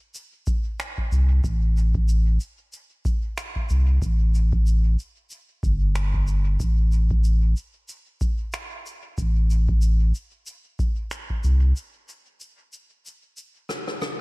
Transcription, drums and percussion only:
0.15 shaker
0.47 kick, shaker
0.80 finger snap, shaker
0.98 kick
1.12 shaker
1.44 kick, shaker
1.77 shaker
1.95 kick
2.09 shaker
2.40 shaker
2.73 shaker
3.05 kick, shaker
3.38 finger snap, shaker
3.56 kick
3.69 shaker
4.02 kick, shaker
4.35 shaker
4.53 kick
4.66 shaker
4.99 shaker
5.30 shaker
5.63 kick, shaker
5.95 finger snap, shaker
6.14 kick
6.27 shaker
6.60 kick, shaker
6.92 shaker
7.11 kick
7.24 shaker
7.57 shaker
7.89 shaker
8.21 kick, shaker
8.53 finger snap, shaker
8.86 shaker
9.18 kick, shaker
9.50 shaker
9.69 kick
9.82 shaker
10.15 shaker
10.46 shaker
10.79 kick, shaker
11.11 finger snap, shaker
11.30 kick
11.44 shaker
11.76 shaker
12.09 shaker
12.40 shaker
12.73 shaker
13.06 shaker
13.37 shaker
13.69 cross-stick, shaker
13.88 cross-stick
14.01 cross-stick, shaker

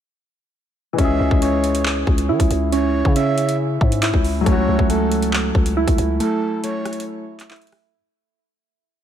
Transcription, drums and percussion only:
0.98 kick, closed hi-hat
1.31 kick
1.42 closed hi-hat
1.64 closed hi-hat
1.75 closed hi-hat
1.86 clap
2.07 kick
2.18 closed hi-hat
2.40 kick, closed hi-hat
2.51 closed hi-hat
2.72 closed hi-hat
3.05 kick
3.16 closed hi-hat
3.38 closed hi-hat
3.49 closed hi-hat
3.81 kick
3.92 closed hi-hat
4.03 clap, closed hi-hat
4.14 kick
4.24 open hi-hat
4.46 kick, closed hi-hat
4.79 kick
4.90 closed hi-hat
5.12 closed hi-hat
5.22 closed hi-hat
5.33 clap
5.55 kick
5.66 closed hi-hat
5.88 kick, closed hi-hat
5.98 closed hi-hat
6.20 closed hi-hat
6.64 closed hi-hat
6.85 cross-stick, closed hi-hat
6.93 closed hi-hat
7.00 closed hi-hat
7.40 clap, closed hi-hat
7.51 clap, closed hi-hat
7.56 closed hi-hat
7.62 closed hi-hat
7.67 closed hi-hat
7.72 cross-stick, open hi-hat

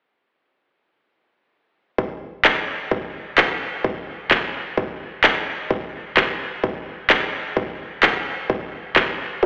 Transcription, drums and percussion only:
1.98 kick
2.45 kick, clap
2.91 kick
3.38 kick, clap
3.84 kick
4.31 kick, clap
4.78 kick
5.24 kick, clap
5.71 kick
6.17 kick, clap
6.64 kick
7.10 kick, clap
7.57 kick
8.03 kick, clap
8.50 kick
8.96 kick, clap
9.43 kick

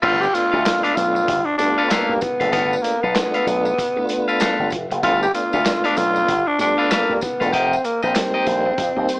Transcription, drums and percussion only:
0.03 kick, crash
0.23 tambourine
0.35 closed hi-hat, tambourine
0.66 snare, clap, closed hi-hat, tambourine
0.84 closed hi-hat
0.97 closed hi-hat, tambourine
1.16 tambourine
1.28 kick, closed hi-hat, tambourine
1.59 closed hi-hat, tambourine
1.90 snare, clap, closed hi-hat, tambourine
2.21 kick, closed hi-hat, tambourine
2.41 closed hi-hat
2.53 kick, closed hi-hat
2.73 tambourine
2.84 closed hi-hat, tambourine
3.15 snare, clap, closed hi-hat, tambourine
3.34 closed hi-hat
3.47 closed hi-hat, tambourine
3.65 tambourine
3.78 kick, closed hi-hat, tambourine
4.09 closed hi-hat, tambourine
4.29 tambourine
4.40 snare, clap, closed hi-hat, tambourine
4.70 kick, closed hi-hat, tambourine
4.91 closed hi-hat
5.03 kick, closed hi-hat
5.23 tambourine
5.35 closed hi-hat, tambourine
5.53 tambourine
5.65 snare, clap, closed hi-hat, tambourine
5.85 closed hi-hat
5.97 closed hi-hat, tambourine
6.16 tambourine
6.28 kick, closed hi-hat, tambourine
6.59 closed hi-hat, tambourine
6.91 snare, clap, closed hi-hat, tambourine
7.21 kick, closed hi-hat, tambourine
7.41 closed hi-hat, tambourine
7.53 kick, closed hi-hat
7.73 tambourine
7.84 closed hi-hat, tambourine
8.02 tambourine
8.15 snare, clap, closed hi-hat, tambourine
8.47 closed hi-hat, tambourine
8.78 kick, closed hi-hat, tambourine
9.09 closed hi-hat, tambourine

